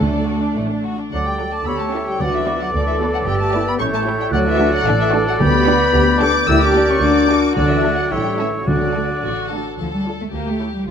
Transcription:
Already playing: A3 A4
0.00 D2 D3 A3 D4 D5
0.14 D4
0.27 F#4
0.43 D4
0.56 A1 A2 A3
0.70 D4
0.86 F#4
0.99 D4
1.11 D2 F#3 A4 D5 F#5 D6
1.25 G3 G5
1.39 F#3 F#4 A4 D5
1.52 A3 A5
1.65 D2 B3 G4 C#5 B5 E6
1.78 A3 A5
1.93 C#4 E4 A4 E5
2.06 G3 G5
2.18 D2 D3 F#3 F#4 B4 D5 F#5 D6
2.31 E3 E5
2.47 B3 F#4 B4 D5
2.58 F#3 F#5
2.72 D2 D3 A4 D5
2.85 E3 E5
3.00 B3 F#4 B4 D5
3.14 F#3 F#5
3.26 G1 G3 G4 G5 E6
3.40 A3 A5
3.54 B3 E4 G4 D5
3.67 B3 B5
3.79 A1 C#4 E4 A4 C#5 C#6 G6
3.93 A3 A5
4.06 A3 E4 G4 C#5
4.20 G3 G5
4.32 D2 F#3 F#4 D5 F#5 F#6
4.47 E3 E5
4.58 A3 D4 F#4 D5
4.72 F#3 F#5
4.86 A1 D3 A4 D5
5.00 E3 E5
5.12 A3 D4 F#4 D5
5.27 F#3 F#5
5.40 D2 D3 B3 G4 B4 B5 G6
5.66 B3 D4 F#4 G4 D5
5.94 D2 G4
6.21 B3 D4 G4 A4 D5 D6
6.47 D2 E4 G4 A#4 D5 E6
6.62 D4 D6
6.74 A#3 D4 G4 D5
6.91 C#4 C#6
7.02 D2 D4 F#4 D6
7.29 A#3 D4 G4 D5
7.56 D2 D3 A4 D5 F#6
7.69 E3 E5
7.84 A3 D4 F#4 A4
7.98 F#3 F#5
8.11 A1 G3 E4 A4 C#5 G5 E6
8.38 E3 A3 C#4 E4 A4 E5
8.67 D2 D3 F#4 A4 D5 F#6
8.95 A3 D4 F#4 A4
9.24 A1 F#4
9.52 A3 D4 A4
9.79 D2 F3 A4
9.93 G3
10.07 F4 A4 D5
10.21 A3
10.34 D2 A#3 G4
10.48 A3
10.60 E4 A4 C#5
10.75 G3
10.88 D2 F3 F4

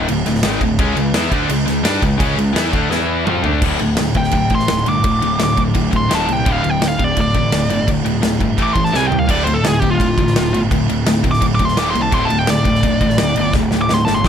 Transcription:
0.08 D1 D2 A2, crash
0.26 D1 D2 A2, snare, crash
0.35 snare
0.43 G#1 G#2 D#3 G#3, snare, crash
0.61 D1 D2 A2, kick, crash
0.78 C#2 C#3 G#3 C#4, kick, crash
0.97 C#2 C#3 G#3, crash
1.13 E2 E3 B3 E4, snare, crash
1.32 D2 D3 A3 D4, kick, crash
1.49 C#2 C#3 G#3, crash
1.66 C#2 C#3 G#3, snare, crash
1.84 G2 G3 D4 G4, snare, crash
2.02 C#2 C#3 G#3, kick, crash
2.18 C#2 C#3 G#3 C#4, kick, crash
2.35 C#2 C#3 G#3, crash
2.53 E2 E3 B3 E4, snare, crash
2.72 D2 D3 A3 D4, kick, crash
2.90 E2 E3 B3 E4, snare
3.25 F2 F3 C4 F4, mid tom
3.43 D2 D3 A3 D4, floor tom
3.60 D1 D2 A2 D3, kick, crash
3.79 D1 D2 A2, crash
3.97 D1 D2 A2, snare, crash
4.14 D1 D2 A2 G5, kick, crash
4.24 snare
4.31 D1 D2 A2, kick, crash
4.50 A1 D2 A2, kick, crash
4.55 C6
4.59 snare
4.68 D1 D2 A2, snare, crash
4.86 G1 D2 A2 D6, crash
5.04 D1 D2 A2, kick, crash
5.22 D1 D2 A2, crash
5.38 D1 D2 A2, snare, crash
5.43 D6
5.57 D1 D2 A2, kick, crash
5.74 D1 D2 A2, kick, crash
5.91 D1 D2 A2, kick, crash
5.97 C6
6.09 D#1 D#2 A#2 D#3, snare, crash
6.15 A5
6.27 C2 D#2 A#2, crash
6.33 G5
6.45 D1 D2 A2 D3, kick, crash
6.52 F5
6.63 D1 D2 A2, crash
6.70 G5
6.81 D1 D2 A2, snare, crash
6.88 F5
6.99 D1 D2 A2, kick, crash
7.04 D5
7.16 D1 D2 A2, kick, crash
7.21 D5
7.34 A1 D2 A2, kick, crash
7.52 D1 D2 A2, snare, crash
7.69 G1 D2 A2, crash
7.87 D1 D2 A2, kick, crash
8.05 D1 D2 A2, crash
8.22 D1 D2 A2, snare, crash
8.40 G1 D2 A2, kick, crash
8.58 A1 A2 E3 A3, kick, crash
8.63 D6
8.73 A1 A2 E3 C6, kick, crash
8.84 A5, snare
8.92 C2 C3 G3 C4 G#5, snare
9.07 C2 C3 G3 G5
9.12 floor tom
9.19 F5
9.27 D1 D2 A2 D3 D5, kick, crash
9.44 D1 D2 A2 C5, crash
9.54 A4
9.64 D1 D2 A2 G#4, snare, crash
9.80 D1 D2 A2 G4, kick, crash
9.90 F4
10.00 D1 D2 A2, kick, crash
10.17 A1 D2 A2, kick, crash
10.27 snare
10.36 D1 D2 A2, snare, crash
10.53 G1 D2 A2, crash
10.71 D1 D2 A2, kick, crash
10.89 D1 D2 A2, crash
11.06 D1 D2 A2, snare, crash
11.23 D1 D2 A2, kick, crash
11.31 D6, snare
11.41 D1 D2 A2, kick, crash
11.55 D6
11.59 D1 D2 A2, kick, crash
11.65 C6, snare
11.77 D#1 D#2 A#2 D#3 D6, snare, crash
11.91 D#2 A#2 C6
11.95 C2, crash
12.02 A5
12.11 D1 D2 A2 D3 C6, kick, crash
12.25 A5
12.30 D1 D2 A2, crash
12.39 G5
12.47 D1 D2 A2 D5, snare, crash
12.64 D1 D2 A2, kick, crash
12.75 snare
12.83 D1 D2 A2, kick, crash
13.01 A1 D2 A2, kick, crash
13.10 snare
13.18 D1 D2 A2, snare, crash
13.36 G1 D2 A2, crash
13.53 D1 D2 A2, kick, snare
13.71 D1 D2 A2, snare
13.82 D6
13.89 D1 D2 A2, snare
13.94 C6
14.05 G1 D2 A2 A5, snare
14.14 C6
14.24 A1 A2 E3 A3, kick, snare

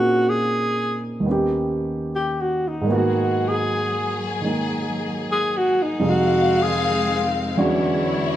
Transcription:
Already playing: A#2 A#3 C4 C#4 D#4 F#4 G#4
0.29 G#4
1.20 D#2 D#3
1.26 B3 C#4
1.31 G4
2.15 G4
2.41 F#4
2.68 D#4
2.81 G#2 D#3
2.87 F#3 A#3 B3 G#4
2.92 F#4
3.48 G#4
4.42 D#3 G#3 A#3 D#4
5.32 G#4
5.57 F#4
5.82 D#4
5.99 F2 C3 D#3 G#3 C4 D#4 G#4 F5
6.09 F#4
6.62 G#4
7.57 E2 D3 E3 F#3 G#3 C#4 D4 E4 F#4 C#5

